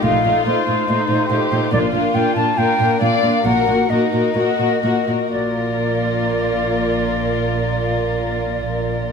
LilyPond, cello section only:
\new Staff \with { instrumentName = "Cello section" } { \clef bass \time 4/4 \key bes \major \tempo 4 = 130 bes,8 bes,8 bes,8 bes,8 bes,8 bes,8 bes,8 bes,8 | bes,8 bes,8 bes,8 bes,8 bes,8 bes,8 bes,8 bes,8 | bes,8 bes,8 bes,8 bes,8 bes,8 bes,8 bes,8 bes,8 | bes,1~ |
bes,1 | }